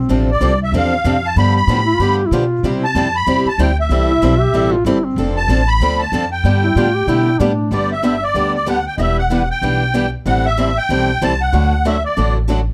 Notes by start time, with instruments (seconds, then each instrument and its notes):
Already playing: duduk C4
0.09 upright bass A1, steel-string acoustic guitar C3 F3 C4 D4 A4
0.31 accordion D5
0.41 upright bass C2, steel-string acoustic guitar C3 F3 C4 D4 A4
0.64 accordion E5
0.72 upright bass E2, steel-string acoustic guitar C3 F3 C4 D4 A4
0.76 accordion F5
1.04 upright bass F2, steel-string acoustic guitar C3 F3 C4 D4 A4
1.25 accordion A5
1.36 upright bass G2, steel-string acoustic guitar D3 F3 B3 D4 G4, accordion B5
1.57 accordion B5
1.67 upright bass A2, steel-string acoustic guitar D3 F3 B3 D4 G4
1.87 duduk E4
1.94 duduk F4
1.99 upright bass G2, steel-string acoustic guitar D3 F3 B3 D4 G4, duduk G4
2.26 duduk E4
2.31 upright bass B2, steel-string acoustic guitar D3 F3 B3 D4 G4, duduk F4
2.63 upright bass C3, steel-string acoustic guitar C3 G3 C4 E4 G4
2.84 accordion A5
2.95 upright bass F2, steel-string acoustic guitar C3 G3 C4 E4 G4
3.16 accordion B5
3.27 upright bass E2, steel-string acoustic guitar C3 G3 C4 E4 G4
3.45 accordion A5, muted upright bass stroke
3.58 upright bass D2, steel-string acoustic guitar C3 G3 C4 E4 G4, accordion G5
3.80 accordion E5
3.89 upright bass C2, steel-string acoustic guitar E3 G3 C4 E4 A4
4.09 duduk E4
4.22 upright bass B1, steel-string acoustic guitar E3 G3 C4 E4 A4
4.41 duduk G4
4.53 upright bass A1, steel-string acoustic guitar E3 G3 C4 E4 A4
4.73 duduk F4
4.85 upright bass G1, steel-string acoustic guitar E3 G3 C4 E4 A4, duduk E4
5.05 duduk C4
5.16 upright bass F1, steel-string acoustic guitar F3 C4 D4 A4
5.37 accordion A5
5.48 upright bass A1, steel-string acoustic guitar F3 C4 D4 A4
5.68 accordion B5
5.80 upright bass D2, steel-string acoustic guitar F3 C4 D4 A4
6.00 accordion A5
6.12 upright bass F2, steel-string acoustic guitar F3 C4 D4 A4
6.32 accordion G5
6.44 upright bass G2, steel-string acoustic guitar D3 G3 B3 D4 G4
6.63 duduk E4
6.76 upright bass A2, steel-string acoustic guitar D3 G3 B3 D4 G4, duduk F4
6.95 duduk G4
7.07 upright bass B2, steel-string acoustic guitar D3 G3 B3 D4 G4, duduk E4
7.40 upright bass A2, steel-string acoustic guitar D3 G3 B3 D4 G4, duduk D4
7.71 upright bass G1, steel-string acoustic guitar D3 G3 B3 D4 G4, accordion D5
7.92 accordion E5
8.04 steel-string acoustic guitar D3 G3 B3 D4 G4
8.23 accordion D5
8.34 upright bass D2, steel-string acoustic guitar D3 G3 B3 D4 G4
8.55 accordion D5
8.67 steel-string acoustic guitar D3 G3 B3 D4 G4, accordion F#5
8.87 accordion G5
8.98 upright bass E1, steel-string acoustic guitar E3 G3 B3 D4 E4 G4 B4, accordion D#5 E5
9.19 accordion F#5
9.30 steel-string acoustic guitar E3 G3 B3 D4 E4 G4 B4, accordion F#5
9.51 accordion G5
9.62 upright bass B1, steel-string acoustic guitar E3 G3 B3 D4 E4 G4 B4
9.94 steel-string acoustic guitar E3 G3 B3 D4 E4 G4 B4
10.26 upright bass A1, steel-string acoustic guitar E3 G3 C4 E4 A4, accordion F#5
10.45 accordion E5
10.57 steel-string acoustic guitar E3 G3 C4 E4 A4
10.78 accordion G5
10.89 upright bass B1, steel-string acoustic guitar E3 G3 C4 E4 A4
11.22 upright bass C2, steel-string acoustic guitar E3 G3 C4 E4 A4, accordion A5
11.41 accordion F#5
11.53 upright bass D2, steel-string acoustic guitar D3 F#3 A3 D4 F#4 A4
11.85 steel-string acoustic guitar D3 F#3 A3 D4 F#4 A4, accordion E5
12.05 accordion D5
12.17 upright bass A1, steel-string acoustic guitar D3 F#3 A3 D4 F#4 A4
12.48 steel-string acoustic guitar D3 F#3 A3 D4 F#4 A4